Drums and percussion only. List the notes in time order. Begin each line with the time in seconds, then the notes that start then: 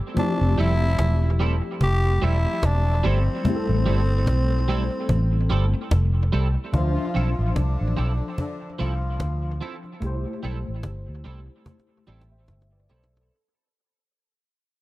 0.17 cajon bass
0.40 cajon slap
0.58 cajon slap
0.99 cajon bass, cajon slap
1.23 cajon slap
1.40 cajon slap
1.63 cajon slap
1.81 cajon bass
2.05 cajon slap
2.22 cajon slap
2.63 cajon bass, cajon slap
2.87 cajon slap
3.27 cajon slap
3.45 cajon bass
3.68 cajon slap
3.86 cajon slap
4.09 cajon slap
4.27 cajon bass, cajon slap
4.52 cajon slap
4.68 cajon slap
4.92 cajon slap
5.09 cajon bass
5.33 cajon slap
5.50 cajon slap
5.74 cajon slap
5.91 cajon bass, cajon slap
6.15 cajon slap
6.56 cajon slap
6.74 cajon bass
6.96 cajon slap
7.15 cajon slap
7.39 cajon slap
7.56 cajon bass, cajon slap
7.80 cajon slap
7.98 cajon slap
8.21 cajon slap
8.38 cajon bass
8.62 cajon slap
8.80 cajon slap
9.03 cajon slap
9.20 cajon bass, cajon slap
9.44 cajon slap
9.84 cajon slap
10.02 cajon bass
10.24 cajon slap
10.42 cajon slap
10.66 cajon slap
10.83 cajon bass, cajon slap
11.08 cajon slap
11.49 cajon slap
11.66 cajon bass, cajon slap
11.80 cajon slap
11.89 cajon slap
12.07 cajon slap
12.21 cajon slap
12.31 cajon slap
12.48 cajon bass, cajon slap
12.62 cajon slap
12.72 cajon slap
12.90 cajon slap
13.04 cajon slap
13.13 cajon slap
13.17 cajon slap